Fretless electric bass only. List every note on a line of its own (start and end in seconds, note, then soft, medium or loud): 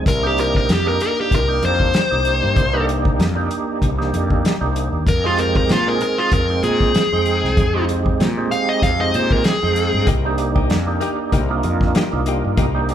0.07 0.65 C2 loud
0.69 0.97 F2 medium
1.31 1.60 C2 medium
1.63 1.91 F2 loud
2.12 2.40 C2 medium
2.43 2.56 G2 medium
2.57 3.15 C2 medium
3.19 3.47 F2 medium
3.82 4.10 C2 medium
4.13 4.41 F2 medium
4.61 4.89 C2 medium
4.93 5.05 D#2 medium
5.07 5.65 F2 loud
5.69 5.97 A#2 loud
6.32 6.60 F2 loud
6.63 6.91 A#2 medium
7.12 7.40 F2 medium
7.44 7.56 C2 medium
7.57 8.16 F2 medium
8.20 8.48 A#2 loud
8.83 9.11 F2 loud
9.15 9.42 A#2 loud
9.63 9.91 F2 medium
9.94 10.06 G2 medium
10.07 10.66 C2 medium
10.71 10.98 F2 medium
11.33 11.61 C2 medium
11.64 11.92 F2 medium
12.13 12.41 C2 medium
12.44 12.57 G2 medium
12.58 12.94 C2 medium